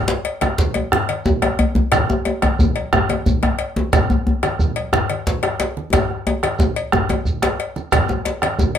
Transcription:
0.08 djembe slap, shekere
0.25 bombo rim, cowbell, djembe slap
0.41 bombo rim, cowbell, djembe slap, djembe tone, high conga, shekere
0.58 bombo low, djembe slap, high conga, shekere
0.74 bombo rim, cowbell, djembe tone
0.92 bombo rim, djembe tone, high conga, djembe bass, low conga, shekere
1.09 cowbell, high conga
1.25 bombo low, djembe tone, shekere
1.42 bombo rim, cowbell, djembe slap, djembe tone, high conga
1.59 bombo rim, cowbell, high conga, djembe bass
1.75 high conga, djembe bass
1.92 bombo rim, bombo low, cowbell, djembe tone, djembe bass, low conga, shekere
2.09 djembe slap, djembe tone, shekere
2.25 bombo rim, cowbell, djembe slap, djembe tone
2.42 bombo rim, cowbell, djembe slap, djembe tone, high conga, djembe bass, shekere
2.59 bombo low, djembe slap, high conga, djembe bass, shekere
2.76 bombo rim, cowbell
2.93 bombo rim, djembe tone, high conga, djembe bass, low conga, shekere
3.09 cowbell, djembe tone, high conga
3.26 bombo low, djembe bass, shekere
3.43 bombo rim, cowbell, djembe slap, high conga, djembe tone, djembe bass
3.59 bombo rim, cowbell, high conga
3.76 high conga, djembe tone
3.93 bombo rim, bombo low, cowbell, djembe tone, djembe bass, low conga, shekere
4.10 djembe slap, djembe bass, shekere
4.27 bombo rim, djembe slap, djembe bass
4.43 bombo rim, cowbell, djembe slap, djembe tone, high conga, shekere
4.59 bombo low, djembe slap, high conga, shekere
4.76 bombo rim, cowbell
4.93 bombo rim, djembe slap, djembe tone, high conga, djembe bass, low conga, shekere
5.10 cowbell, high conga
5.27 bombo low, djembe slap, shekere
5.43 bombo rim, cowbell, djembe slap, djembe tone, high conga
5.60 bombo rim, cowbell, djembe slap, high conga
5.77 high conga
5.93 bombo rim, bombo low, cowbell, djembe tone, djembe bass, low conga, shekere
6.10 bombo rim, djembe slap
6.27 cowbell, djembe tone
6.43 bombo rim, cowbell, djembe slap, high conga, djembe tone, shekere
6.59 bombo rim, bombo low, djembe tone, shekere
6.76 cowbell, high conga, shekere
6.92 bombo rim, djembe tone, high conga, djembe bass, low conga, shekere
7.09 cowbell, high conga, djembe tone
7.25 bombo low, shekere
7.42 bombo rim, cowbell, djembe slap, djembe tone, shekere
7.60 cowbell
7.76 bombo rim, djembe slap, high conga, shekere
7.92 bombo rim, bombo low, cowbell, djembe tone, djembe bass, low conga, shekere
8.09 djembe slap, djembe tone, shekere
8.25 bombo rim, cowbell, djembe slap
8.42 bombo rim, cowbell, djembe slap, djembe tone, high conga, shekere
8.58 bombo low, djembe slap, djembe tone, shekere
8.75 cowbell

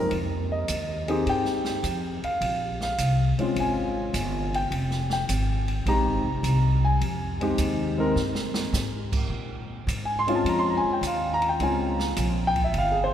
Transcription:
Already playing: A#4
0.11 F2, ride
0.52 D#5
0.68 D#2, hi-hat pedal, ride
1.08 C4 D#4 G4 G#4, ride
1.26 G2 G5, ride
1.45 snare
1.65 snare
1.83 F2, hi-hat pedal, ride
2.23 F5, muted upright bass stroke, ride
2.41 A#1, ride
2.81 F5, snare
2.98 C2, hi-hat pedal, ride
3.38 G#3 C4 C#4 F4, muted upright bass stroke, ride
3.56 G#1, ride
3.60 G#5
4.13 G1, hi-hat pedal, ride
4.54 G5, ride
4.71 F1, ride
4.91 snare
5.10 G5, snare
5.29 G#1, hi-hat pedal, ride
5.68 ride
5.86 A#1 G#3 C4 D#4 G4 A#5, ride
6.06 G#1
6.24 F1
6.43 C2, hi-hat pedal, ride
6.85 G#5
7.01 F2, ride
7.41 G#3 C4 D#4 G4, ride
7.58 D#2, hi-hat pedal, ride
7.98 G#3 C4 D#4 A#4
8.15 G2, snare
8.35 snare
8.54 snare
8.73 G#2, snare, hi-hat pedal
9.12 kick, crash
9.29 A#2
9.87 G#2, hi-hat pedal, ride
10.05 G#5
10.19 C6
10.27 G#3 C4 C#4 F4, ride
10.35 A5
10.44 F2, ride
10.49 A#5
10.59 C6
10.70 A#5
10.77 G#5
10.84 muted upright bass stroke
10.93 G5
11.01 D#2, hi-hat pedal, ride
11.07 F5
11.34 A#5
11.42 ride
11.49 G5
11.59 C#2 G#3 C4 C#4 F4 G#5, ride
11.99 snare
12.16 A#1, hi-hat pedal, ride
12.47 G5
12.56 kick, ride
12.64 E5
12.74 G1, ride
12.78 F5
12.92 G#4
13.04 C5

